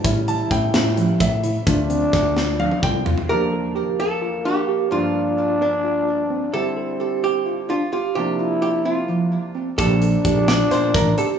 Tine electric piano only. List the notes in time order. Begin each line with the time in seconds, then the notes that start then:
0.04 E4
0.51 C#4
0.74 C#4
0.98 F3
1.44 E4
1.67 D4
1.90 C4
2.13 A3
2.59 D4
2.82 F4
3.05 F4
3.29 G4
3.52 A4
3.75 G4
4.22 F4
4.45 D4
4.68 G4
5.15 F4
5.38 F4
5.61 D4
5.84 F4
6.30 C4
6.54 G4
6.77 A4
7.00 G4
7.46 F4
7.70 D4
7.93 G4
8.39 F4
8.63 F4
8.86 C4
9.08 F3
9.55 C4
9.78 G4
10.02 A4
10.25 G4
10.71 F4
10.94 D4
11.18 G4